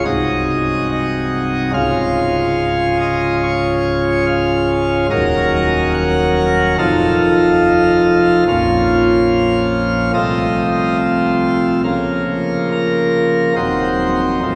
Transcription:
0.05 1.70 C1 medium
0.05 1.70 C2 medium
0.05 1.70 G#3 medium
0.05 1.70 D#4 medium
0.05 1.70 F#4 medium
0.05 0.88 D#5 loud
0.90 1.72 D#5 medium
1.73 5.06 C#1 medium
1.73 5.06 C#2 medium
1.73 5.06 G#3 medium
1.73 5.06 C#4 soft
1.73 5.06 F4 soft
1.73 2.97 F5 loud
3.01 3.37 D#5 loud
3.43 4.25 C#5 loud
4.26 5.08 F5 loud
5.10 6.75 D#1 medium
5.10 6.75 D#2 medium
5.10 6.75 F#3 medium
5.10 6.75 C#4 medium
5.10 6.76 A#4 medium
5.10 5.92 D#5 loud
5.94 6.76 F#5 loud
6.78 8.43 F1 medium
6.78 8.44 F2 medium
6.78 8.44 F3 medium
6.78 8.43 D#4 medium
6.78 8.44 A4 medium
6.78 8.44 F5 loud
8.48 10.11 A#1 medium
8.48 10.11 A#2 medium
8.48 10.11 F3 soft
8.48 10.11 C#4 medium
8.48 10.11 F4 medium
8.48 10.11 F5 loud
10.14 11.80 C2 medium
10.14 11.80 C3 medium
10.14 11.80 F3 medium
10.14 11.80 A3 medium
10.14 11.80 F4 medium
10.14 10.97 D#5 medium
11.84 13.53 C#3 medium
11.84 13.52 F3 soft
11.84 13.53 A#3 medium
11.84 12.68 F4 medium
12.71 13.54 A#4 medium
13.56 14.40 D#1 medium
13.56 14.40 D#2 medium
13.56 14.40 F#3 soft
13.56 14.39 C4 soft
13.56 14.39 D#4 soft
13.56 14.55 C5 medium
14.42 14.55 A1 soft
14.42 14.55 A2 medium
14.42 14.55 F3 soft
14.42 14.55 C4 soft
14.42 14.55 D#4 soft

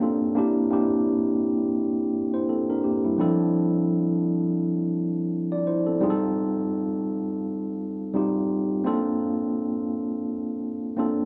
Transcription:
0.00 0.32 A#3 medium
0.00 0.32 C4 medium
0.00 0.33 D4 medium
0.00 0.33 F4 medium
0.00 0.34 A4 medium
0.35 0.67 A#3 medium
0.35 0.68 C4 medium
0.35 0.68 D4 medium
0.35 0.68 E4 medium
0.35 0.69 G4 loud
0.70 1.99 A#3 medium
0.70 1.99 C4 medium
0.70 1.99 D4 medium
0.70 1.99 E4 medium
0.70 2.00 G4 loud
2.34 2.48 E4 soft
2.34 2.48 C5 medium
2.49 2.69 C4 medium
2.49 2.68 A4 medium
2.70 2.84 D4 medium
2.70 2.83 A#4 medium
2.84 3.04 A#3 medium
2.84 3.03 G4 medium
3.04 3.38 G3 medium
3.04 3.19 E4 medium
3.18 4.46 F3 medium
3.18 4.47 C4 medium
3.18 4.47 D4 medium
3.18 4.47 E4 medium
3.18 4.48 A4 loud
5.52 5.66 F4 medium
5.52 5.66 D5 medium
5.67 5.87 E4 medium
5.67 5.86 C5 medium
5.87 6.00 C4 medium
5.87 6.09 A4 medium
6.00 7.29 G3 medium
6.00 7.29 C4 medium
6.00 7.30 D#4 medium
6.00 7.30 F4 medium
6.00 6.10 G#4 medium
6.10 7.34 A4 loud
8.14 8.78 G3 medium
8.14 8.78 C4 medium
8.14 8.79 D#4 medium
8.14 8.79 F4 medium
8.14 8.79 G4 medium
8.84 10.12 A#3 loud
8.84 10.13 C4 medium
8.84 10.13 D4 medium
8.84 10.13 F4 medium
8.84 10.14 A4 loud
10.97 11.25 A#3 medium
10.97 11.25 C4 medium
10.97 11.25 D4 medium
10.97 11.25 F4 medium
10.97 11.25 A4 loud

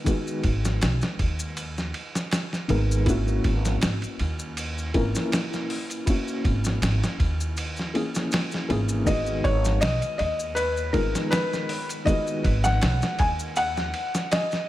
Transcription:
0.00 0.04 D#3 medium
0.00 0.06 G#3 medium
0.00 0.07 B3 medium
0.00 2.71 A#4 medium
0.04 2.64 D#3 medium
0.04 2.65 G#3 medium
0.04 2.65 B3 medium
0.04 kick loud
0.04 ride medium
0.04 maracas medium
0.09 2.66 F#4 medium
0.27 maracas soft
0.43 0.78 G#1 medium
0.43 kick medium
0.43 ride medium
0.65 snare soft
0.65 maracas medium
0.81 1.00 B1 medium
0.81 snare loud
0.81 ride medium
0.81 maracas medium
1.01 snare medium
1.01 maracas soft
1.19 1.91 D#2 medium
1.19 kick medium
1.19 ride medium
1.39 maracas medium
1.57 ride medium
1.57 maracas medium
1.78 snare soft
1.78 maracas soft
1.94 ride medium
2.15 snare medium
2.15 maracas medium
2.31 snare loud
2.31 ride medium
2.31 maracas medium
2.53 snare soft
2.53 maracas soft
2.68 3.42 G#1 medium
2.68 3.01 D#3 medium
2.68 3.02 G#3 medium
2.68 3.02 B3 medium
2.68 3.02 A#4 medium
2.68 ride medium
2.91 maracas medium
3.06 4.90 A#3 medium
3.06 4.91 C#4 medium
3.06 4.90 E4 medium
3.06 4.92 F#4 loud
3.06 kick loud
3.06 ride medium
3.06 maracas medium
3.28 maracas soft
3.44 3.78 G#1 medium
3.44 kick medium
3.44 ride medium
3.65 snare soft
3.65 maracas medium
3.81 4.00 G#1 medium
3.81 snare loud
3.81 ride medium
3.81 maracas medium
4.02 ride soft
4.02 maracas soft
4.19 4.92 D#2 medium
4.19 ride medium
4.39 maracas medium
4.57 ride medium
4.57 maracas medium
4.78 maracas soft
4.94 5.13 G#1 medium
4.94 5.16 E3 medium
4.94 5.16 A#3 medium
4.94 5.17 C#4 medium
4.94 5.17 A#4 loud
4.94 kick medium
4.94 ride medium
5.15 snare soft
5.15 maracas medium
5.32 snare loud
5.32 ride medium
5.32 maracas medium
5.53 snare soft
5.53 maracas soft
5.70 open hi-hat medium
5.90 ride soft
5.90 maracas medium
6.06 7.91 A#3 medium
6.06 7.92 C#4 medium
6.06 7.91 E4 medium
6.06 kick loud
6.06 ride medium
6.06 maracas medium
6.10 7.93 F#4 medium
6.28 maracas soft
6.45 6.78 G#1 medium
6.45 kick medium
6.45 ride medium
6.64 snare soft
6.64 maracas medium
6.82 7.00 G#1 medium
6.82 snare loud
6.82 ride medium
6.82 maracas medium
7.04 snare medium
7.04 maracas soft
7.20 7.91 D#2 medium
7.20 kick medium
7.20 ride medium
7.40 maracas medium
7.57 ride medium
7.57 maracas medium
7.76 snare soft
7.76 maracas soft
7.94 8.65 E3 medium
7.94 8.65 A#3 medium
7.94 8.66 C#4 medium
7.94 8.66 G#4 medium
7.94 ride medium
8.15 snare soft
8.15 maracas medium
8.32 snare loud
8.32 ride medium
8.32 maracas medium
8.52 snare soft
8.52 maracas soft
8.69 9.41 G#1 medium
8.69 9.02 E3 medium
8.69 9.03 A#3 medium
8.69 9.03 C#4 medium
8.69 9.04 G#4 medium
8.69 ride medium
8.89 maracas medium
9.05 10.89 D#3 medium
9.05 10.90 G#3 medium
9.05 10.91 B3 medium
9.05 9.45 D#5 loud
9.05 kick loud
9.05 ride medium
9.05 maracas medium
9.09 10.92 F#4 medium
9.26 maracas soft
9.44 9.78 G#1 medium
9.44 9.79 C#5 medium
9.44 kick medium
9.44 ride medium
9.65 snare soft
9.65 maracas medium
9.81 10.00 B1 medium
9.81 10.16 D#5 loud
9.81 snare loud
9.81 ride medium
9.81 maracas medium
10.02 ride soft
10.02 maracas soft
10.18 10.92 D#2 medium
10.18 10.57 D#5 medium
10.18 ride medium
10.39 maracas medium
10.55 10.95 B4 medium
10.55 ride medium
10.55 maracas medium
10.77 maracas soft
10.93 11.12 G#1 medium
10.93 11.15 D#3 medium
10.93 11.16 G#3 medium
10.93 11.16 B3 medium
10.93 11.32 A#4 medium
10.93 11.16 A#4 medium
10.93 kick medium
10.93 ride medium
11.15 snare medium
11.15 maracas medium
11.31 11.85 B4 loud
11.31 snare loud
11.31 ride medium
11.31 maracas medium
11.53 snare soft
11.53 maracas soft
11.69 open hi-hat medium
11.89 ride soft
11.89 maracas medium
12.05 14.64 D#3 medium
12.05 14.65 G#3 medium
12.05 14.66 B3 medium
12.05 12.60 D#5 loud
12.05 kick loud
12.05 ride medium
12.05 maracas medium
12.10 14.67 F#4 medium
12.27 maracas soft
12.44 12.78 G#1 medium
12.44 kick medium
12.44 ride medium
12.64 13.15 F#5 loud
12.64 snare soft
12.64 maracas medium
12.81 13.00 B1 medium
12.81 snare loud
12.81 ride medium
12.81 maracas medium
13.02 snare medium
13.02 maracas soft
13.19 13.91 D#2 medium
13.19 13.28 G#5 loud
13.19 kick medium
13.19 ride medium
13.39 maracas medium
13.56 14.34 F#5 loud
13.56 ride medium
13.56 maracas medium
13.77 snare soft
13.77 maracas soft
13.94 ride medium
14.15 snare medium
14.15 maracas medium
14.32 14.69 D#5 medium
14.32 snare loud
14.32 ride medium
14.32 maracas medium
14.51 snare soft
14.51 maracas soft

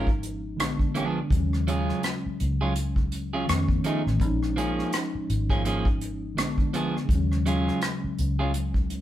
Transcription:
0.00 0.60 G#1 medium
0.00 0.52 F3 medium
0.00 0.54 G#3 medium
0.00 0.59 C#4 medium
0.00 0.57 D#4 medium
0.07 kick medium
0.23 closed hi-hat medium
0.57 1.19 A#1 medium
0.57 1.30 D3 medium
0.57 1.31 G#3 medium
0.57 1.32 B3 medium
0.57 muted clean electric guitar stroke soft
0.57 cross-stick medium
0.57 closed hi-hat medium
0.61 1.32 D4 medium
0.79 kick medium
0.95 1.18 F3 medium
0.95 1.18 B3 medium
0.95 1.18 D4 medium
0.95 1.19 G#4 medium
0.95 closed hi-hat soft
1.27 3.42 C#3 medium
1.27 3.43 F#3 medium
1.27 kick loud
1.31 1.91 D#2 medium
1.31 3.45 G#3 medium
1.31 closed hi-hat medium
1.37 3.47 C#4 medium
1.53 cross-stick soft
1.68 2.01 F#3 medium
1.68 2.01 C#4 medium
1.68 2.02 F4 medium
1.68 2.02 G#4 medium
1.68 closed hi-hat medium
1.89 cross-stick soft
2.03 cross-stick medium
2.03 closed hi-hat medium
2.26 muted fingered electric bass stroke soft
2.40 3.45 C#2 medium
2.40 closed hi-hat medium
2.61 2.73 F#3 soft
2.61 2.73 C#4 soft
2.61 2.73 F4 medium
2.61 2.72 G#4 medium
2.76 closed hi-hat medium
2.96 kick medium
3.12 closed hi-hat medium
3.33 3.46 F#3 soft
3.33 3.45 C#4 soft
3.33 3.45 F4 soft
3.33 3.45 G#4 medium
3.46 3.79 F2 medium
3.46 4.19 D#3 medium
3.46 4.20 A3 medium
3.46 4.21 B3 medium
3.46 cross-stick medium
3.46 closed hi-hat medium
3.51 4.21 C#4 medium
3.69 kick medium
3.84 4.01 F3 medium
3.84 4.01 A3 medium
3.84 4.01 D#4 medium
3.84 4.02 G#4 medium
3.84 closed hi-hat medium
4.07 4.20 A1 medium
4.07 cross-stick soft
4.16 6.31 F3 medium
4.16 6.32 G#3 medium
4.16 kick medium
4.20 4.80 A#1 medium
4.20 6.34 C#4 medium
4.20 closed hi-hat medium
4.26 6.36 D#4 medium
4.43 cross-stick soft
4.56 4.90 F3 medium
4.56 4.90 A#3 medium
4.56 4.91 C#4 medium
4.56 4.91 G#4 medium
4.56 closed hi-hat medium
4.79 cross-stick soft
4.93 cross-stick medium
4.93 closed hi-hat medium
5.15 muted fingered electric bass stroke soft
5.30 6.38 G#1 medium
5.30 closed hi-hat medium
5.50 5.62 F3 soft
5.50 5.62 A#3 soft
5.50 5.62 C#4 soft
5.50 5.62 G#4 medium
5.50 kick medium
5.65 5.86 F3 medium
5.65 5.86 A#3 medium
5.65 5.87 C#4 medium
5.65 5.87 G#4 medium
5.65 closed hi-hat medium
5.85 kick medium
6.01 closed hi-hat medium
6.35 6.98 A#1 medium
6.35 7.08 D3 medium
6.35 7.09 G#3 medium
6.35 7.10 B3 medium
6.35 muted clean electric guitar stroke soft
6.35 cross-stick medium
6.35 closed hi-hat medium
6.40 7.11 D4 medium
6.58 kick medium
6.74 6.95 F3 medium
6.74 6.95 B3 medium
6.74 6.95 D4 medium
6.74 6.96 G#4 medium
6.74 closed hi-hat medium
6.97 cross-stick soft
7.05 9.01 C#3 medium
7.05 9.01 F#3 medium
7.05 kick loud
7.10 7.70 D#2 loud
7.10 9.01 G#3 medium
7.10 closed hi-hat medium
7.15 9.01 C#4 medium
7.32 cross-stick soft
7.46 7.79 F#3 medium
7.46 7.80 C#4 medium
7.46 7.80 F4 medium
7.46 7.80 G#4 medium
7.46 closed hi-hat medium
7.68 cross-stick soft
7.82 cross-stick medium
7.82 closed hi-hat medium
8.04 muted fingered electric bass stroke soft
8.18 9.01 C#2 medium
8.18 closed hi-hat soft
8.39 8.52 F#3 soft
8.39 8.51 C#4 soft
8.39 8.51 F4 medium
8.39 8.51 G#4 medium
8.54 closed hi-hat medium
8.74 kick medium
8.90 closed hi-hat medium

